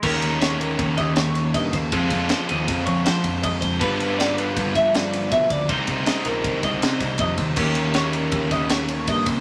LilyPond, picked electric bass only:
\new Staff \with { instrumentName = "Picked electric bass" } { \clef bass \time 5/4 \key ees \mixolydian \tempo 4 = 159 ees,2 ees,8 ees,4. g,8 ees,8 | f,8 f,8 r8 ees,8 f,8 f,8 f8 f,8 f,8 f,8 | g,2 g,8 g,4. b,8 d,8 | c,8 c,8 r8 bes,,8 c,8 c,8 c8 c,8 f,8 ees,8 |
ees,2 ees,8 ees,4. g,8 c,8 | }